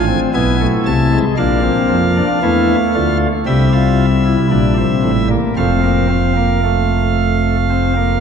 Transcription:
pipe organ
Already playing: A1 A2 G#5
0.07 C4
0.34 B1 B2 B3 E4 G#5
0.60 A3
0.86 C2 C3 A5
1.12 G#3
1.37 A#1 A#2 A#3 D4 F5
1.63 C4
1.89 F2 F3
2.16 D4
2.43 E2 E3 A3 E4
2.94 D2 D3 F4
3.46 C2 C3 G3 G4 E5
3.72 F4
4.24 E4
4.51 A#1 A#2 D4
4.78 C4
5.04 A1 A2
5.30 A#3
5.56 F1 F2 A3 C4 F5
5.83 A#3
6.09 C4
6.36 A#3
6.63 A3
7.70 C4
7.96 A#3

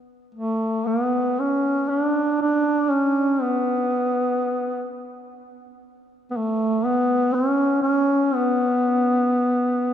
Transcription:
duduk
0.35 A3
0.87 B3
1.40 C#4
1.89 C#4
2.00 D4
2.42 D4
2.91 C#4
3.42 B3
6.31 B3
6.37 A3
6.85 B3
7.34 C#4
7.82 C#4
8.35 B3

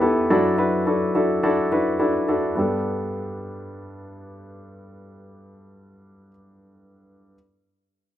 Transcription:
grand piano
Already playing: E2 B2 G4 A4 B4 D5
0.00 B3 E4 G4 A4
0.30 F#2 F#3 D4 E4 F#4 A4
0.58 D4 E4 F#4 B4
0.87 D4 E4 F#4 A4
1.15 D4 E4 F#4 A4
1.43 D4 E4 F#4 A4
1.72 D4 E4 F#4 B4
1.99 D4 E4 F#4 A4
2.28 D4 E4 F#4 A4
2.55 G2 B3 D4 G4
2.59 A4

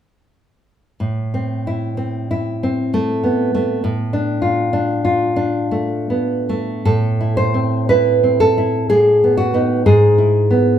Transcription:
nylon-string guitar
1.00 A2
1.34 C4
1.67 E4
1.97 C4
2.31 E4
2.63 C4
2.94 A3
3.24 B3
3.55 A3
3.84 A2
4.13 D4
4.42 F4
4.73 D4
5.05 F4
5.36 D4
5.71 A3
6.10 B3
6.49 A3
6.85 A2 A4
7.21 E4
7.37 C5
7.54 C4
7.89 E4 B4
8.23 C4
8.40 A4
8.58 E4
8.90 A2 G#4
9.24 B3
9.37 F#4
9.54 B3 D#4
9.86 G#2 G#4
10.18 E4
10.51 B3

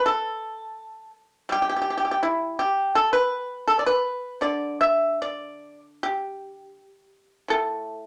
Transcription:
pipa
0.06 A4
1.49 G3 G4
1.62 G4
1.69 G4
1.76 G4
1.82 G4
1.90 G4
1.97 G4
2.05 G4
2.11 G4
2.23 E4
2.59 G4
2.95 A4
3.13 B4
3.68 A4
3.79 D5
3.86 B4
4.41 D3 D5
4.81 E5
5.22 D5
6.03 G4
7.48 A2 A4

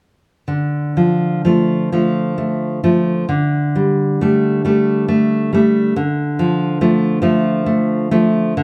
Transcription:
nylon-string guitar
0.48 D3
0.97 F3
1.45 F3 A3
1.92 F3 A3
2.38 A3
2.84 F3 A3
3.29 D3
3.75 G3
4.21 G3 A3
4.65 G3 A3
5.08 A3
5.53 G3 A3
5.96 D3
6.39 F3
6.81 F3 A3
7.22 F3 A3
7.66 A3
8.11 F3 A3
8.57 D3

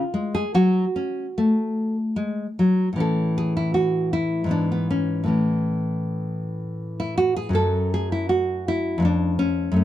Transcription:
nylon-string guitar
Already playing: F4
0.14 G#3
0.35 G#4
0.55 F#3 F#4
0.96 C#4
1.38 A3
2.16 G#3
2.59 F#3
2.93 A2 E3
2.98 C#4 A4
3.38 G#4
3.57 E4
3.74 F#4
4.13 E4
4.44 G#2 E3
4.49 B3 D4
4.72 B3
4.91 C#4
5.24 A2 E3
5.28 C#4
7.00 E4
7.18 F#4
7.36 G#4
7.49 F#2 F#3
7.53 C#4 A4
7.94 G#4
8.12 E4
8.29 F#4
8.68 E4
8.98 F2 G#3
9.02 C#4 D4
9.39 C#4
9.72 F#2 A3
9.76 C#4

